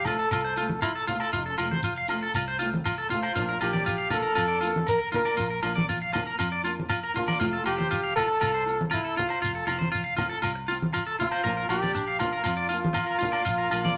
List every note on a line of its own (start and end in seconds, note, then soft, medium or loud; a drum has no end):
0.00 0.28 F1 medium
0.05 0.22 C4 soft
0.05 0.16 F4 medium
0.05 0.81 A4 loud
0.05 muted nylon-string guitar stroke soft
0.05 low conga medium
0.05 low agogo medium
0.05 shekere medium
0.10 0.23 A3 soft
0.19 0.28 A4 medium
0.31 1.29 C2 medium
0.31 0.41 F4 medium
0.31 low agogo medium
0.31 shekere medium
0.44 0.53 C5 medium
0.56 0.74 A3 soft
0.56 0.73 C4 soft
0.56 0.72 F4 medium
0.56 0.66 F4 medium
0.56 shekere medium
0.69 high conga medium
0.82 0.93 E4 medium
0.82 0.91 F4 medium
0.82 low agogo medium
0.82 shekere loud
0.95 1.04 A4 medium
1.07 1.24 C4 soft
1.07 1.16 F4 medium
1.07 1.55 F4 medium
1.07 1.23 F4 medium
1.07 low conga medium
1.07 shekere medium
1.12 1.25 A3 soft
1.20 1.29 A4 medium
1.20 low agogo medium
1.33 1.57 F1 medium
1.33 1.42 F4 medium
1.33 shekere medium
1.46 1.54 A4 medium
1.58 2.31 F1 medium
1.58 1.75 C4 soft
1.58 1.67 F4 medium
1.58 1.74 F4 medium
1.58 low agogo medium
1.58 shekere medium
1.63 1.76 A3 soft
1.71 1.80 C5 medium
1.71 high conga medium
1.83 1.93 F4 medium
1.83 shekere loud
1.98 2.06 F5 medium
2.08 2.26 A3 soft
2.08 2.25 C4 soft
2.08 2.24 F4 medium
2.08 2.19 F4 medium
2.08 low agogo medium
2.08 shekere medium
2.23 2.31 A4 medium
2.34 3.32 C2 loud
2.34 2.44 F4 medium
2.34 low agogo medium
2.34 shekere loud
2.48 2.56 C5 medium
2.59 2.77 A3 soft
2.59 2.76 C4 medium
2.59 2.68 F4 medium
2.59 2.75 F4 medium
2.59 shekere medium
2.74 high conga medium
2.85 2.94 F4 medium
2.85 low agogo medium
2.85 shekere loud
2.98 3.07 A4 medium
3.10 3.27 A3 soft
3.10 3.26 C4 medium
3.10 3.19 F4 medium
3.10 3.26 F4 soft
3.10 3.58 F4 medium
3.10 low conga medium
3.10 shekere medium
3.23 3.31 C5 medium
3.23 low agogo medium
3.35 3.59 A#1 medium
3.35 3.51 F3 medium
3.35 3.51 A#3 medium
3.35 3.52 D4 medium
3.35 3.44 F4 medium
3.35 3.52 F4 medium
3.35 shekere medium
3.49 3.57 A#4 medium
3.61 4.33 A#1 medium
3.61 3.78 A#3 soft
3.61 3.77 D4 soft
3.61 3.70 F4 medium
3.61 3.77 F4 medium
3.61 4.09 G4 medium
3.61 low agogo medium
3.61 shekere medium
3.73 3.82 D5 medium
3.73 high conga medium
3.86 3.95 F4 medium
3.86 shekere loud
3.98 4.07 F5 medium
4.10 4.28 A#3 soft
4.10 4.27 D4 soft
4.10 4.20 F4 medium
4.10 4.27 F4 medium
4.10 4.84 A4 loud
4.10 low conga medium
4.10 low agogo medium
4.10 shekere medium
4.22 4.32 A#4 medium
4.35 5.34 F2 medium
4.35 4.45 F4 medium
4.35 low agogo medium
4.35 shekere loud
4.48 4.57 D5 medium
4.61 4.78 D4 soft
4.61 4.70 F4 medium
4.61 4.78 F4 medium
4.61 shekere medium
4.65 4.79 A#3 soft
4.76 high conga medium
4.87 5.00 A#4 loud
4.87 low agogo medium
4.87 shekere loud
4.99 5.08 A#4 medium
5.12 5.29 D4 soft
5.12 5.21 F4 medium
5.12 5.28 F4 medium
5.12 5.61 A#4 loud
5.12 low conga medium
5.12 shekere medium
5.16 5.30 A#3 soft
5.25 5.34 D5 medium
5.25 low agogo medium
5.37 5.61 A#1 medium
5.37 5.46 F4 medium
5.37 shekere medium
5.50 5.59 A#4 medium
5.63 6.35 A#1 medium
5.63 5.80 A#3 soft
5.63 5.79 D4 soft
5.63 5.72 F4 medium
5.63 5.78 F4 medium
5.63 low agogo medium
5.63 shekere medium
5.75 5.84 D5 medium
5.75 high conga medium
5.89 5.98 F4 medium
5.89 shekere medium
6.02 6.10 F5 medium
6.13 6.30 A#3 soft
6.13 6.29 D4 medium
6.13 6.29 F4 medium
6.13 6.22 F4 medium
6.13 low conga medium
6.13 low agogo medium
6.13 shekere medium
6.27 6.35 A#4 medium
6.39 7.37 F2 medium
6.39 6.48 F4 medium
6.39 low agogo medium
6.39 shekere medium
6.52 6.61 D5 medium
6.63 6.81 A#3 soft
6.63 6.80 D4 soft
6.63 6.79 F4 medium
6.63 6.73 F4 medium
6.63 shekere medium
6.80 high conga medium
6.89 6.98 F4 medium
6.89 low agogo medium
6.89 shekere loud
7.03 7.12 A#4 medium
7.14 7.31 A#3 soft
7.14 7.31 D4 soft
7.14 7.30 F4 medium
7.14 7.24 F4 medium
7.14 7.63 F4 medium
7.14 low conga medium
7.14 shekere medium
7.28 7.37 D5 medium
7.28 high conga medium
7.28 low agogo medium
7.39 7.63 F1 medium
7.39 7.55 A3 medium
7.39 7.56 C4 medium
7.39 7.49 F4 medium
7.39 7.56 F4 medium
7.39 shekere medium
7.53 7.62 A4 medium
7.64 8.38 F1 medium
7.64 7.81 C4 soft
7.64 7.80 F4 medium
7.64 7.74 F4 medium
7.64 8.13 G4 loud
7.64 low agogo medium
7.64 shekere medium
7.78 7.87 C5 medium
7.78 high conga medium
7.91 8.00 F4 medium
7.91 shekere medium
8.03 8.12 F5 medium
8.16 8.33 C4 soft
8.16 8.31 F4 medium
8.16 8.25 F4 medium
8.16 8.88 A4 loud
8.16 low conga medium
8.16 low agogo medium
8.16 shekere medium
8.28 8.37 A4 medium
8.41 9.38 C2 loud
8.41 8.50 F4 medium
8.41 low agogo medium
8.41 shekere medium
8.54 8.63 C5 medium
8.66 8.83 C4 soft
8.66 8.81 F4 soft
8.66 shekere medium
8.81 high conga medium
8.91 9.20 E4 medium
8.91 9.00 F4 medium
8.91 low agogo medium
8.91 shekere medium
9.05 9.13 A4 medium
9.16 9.32 F4 medium
9.16 9.26 F4 medium
9.16 9.68 F4 medium
9.16 low conga medium
9.16 shekere medium
9.29 9.38 C5 medium
9.29 low agogo medium
9.42 9.65 F1 medium
9.42 9.51 F4 medium
9.42 shekere medium
9.55 9.64 A4 medium
9.67 10.39 F1 medium
9.67 9.76 F4 medium
9.67 9.83 F4 medium
9.67 low agogo medium
9.67 shekere medium
9.71 9.84 C4 soft
9.79 9.88 C5 medium
9.79 high conga medium
9.92 10.01 F4 medium
9.92 shekere medium
10.04 10.13 F5 medium
10.17 10.26 F4 medium
10.17 10.33 F4 medium
10.17 low conga medium
10.17 low agogo medium
10.17 shekere medium
10.21 10.35 C4 soft
10.29 10.38 A4 medium
10.42 11.40 C2 medium
10.42 10.51 F4 medium
10.42 low agogo medium
10.42 shekere medium
10.55 muted clean electric guitar stroke medium
10.68 10.85 C4 soft
10.68 10.77 F4 medium
10.68 10.84 F4 medium
10.68 shekere medium
10.82 high conga medium
10.93 11.02 F4 medium
10.93 low agogo medium
10.93 shekere medium
11.07 11.15 A4 medium
11.19 11.36 C4 soft
11.19 11.34 F4 medium
11.19 11.28 F4 medium
11.19 11.67 F4 loud
11.19 low conga medium
11.19 shekere medium
11.31 11.40 C5 medium
11.31 low agogo medium
11.44 11.67 A#1 loud
11.44 11.60 F3 medium
11.44 11.60 A#3 medium
11.44 11.60 D4 medium
11.44 11.61 F4 medium
11.44 11.53 A#4 medium
11.44 shekere medium
11.57 11.65 A#4 medium
11.69 12.41 A#1 medium
11.69 11.86 D4 medium
11.69 11.78 F4 medium
11.69 11.85 F4 medium
11.69 12.21 G4 loud
11.69 low agogo medium
11.69 shekere medium
11.73 11.86 A#3 soft
11.83 11.91 D5 medium
11.83 high conga medium
11.95 12.03 D4 medium
11.95 shekere medium
12.08 12.16 F5 medium
12.19 12.36 A#3 soft
12.19 12.36 D4 soft
12.19 12.28 F4 medium
12.19 12.44 F4 medium
12.19 12.35 F4 medium
12.19 low conga medium
12.19 low agogo medium
12.19 shekere medium
12.32 12.41 A#4 medium
12.44 13.42 F2 medium
12.44 12.53 F4 medium
12.44 13.97 F4 loud
12.44 low agogo medium
12.44 shekere medium
12.57 12.66 D5 medium
12.69 12.86 D4 soft
12.69 12.78 F4 medium
12.69 12.85 F4 medium
12.69 shekere medium
12.73 12.87 A#3 soft
12.84 high conga medium
12.94 13.03 F4 medium
12.94 low agogo medium
12.94 shekere medium
13.07 13.16 A#4 medium
13.19 13.37 D4 medium
13.19 13.28 F4 medium
13.19 13.36 F4 medium
13.19 low conga medium
13.19 shekere medium
13.24 13.37 A#3 soft
13.32 13.41 D5 medium
13.32 low agogo medium
13.45 13.69 A#1 medium
13.45 13.54 F4 medium
13.45 shekere medium
13.58 13.67 A#4 medium
13.70 13.97 A#1 loud
13.70 13.87 A#3 soft
13.70 13.87 D4 medium
13.70 13.86 F4 medium
13.70 13.80 F4 medium
13.70 low agogo medium
13.70 shekere medium
13.85 13.93 D5 medium
13.85 high conga medium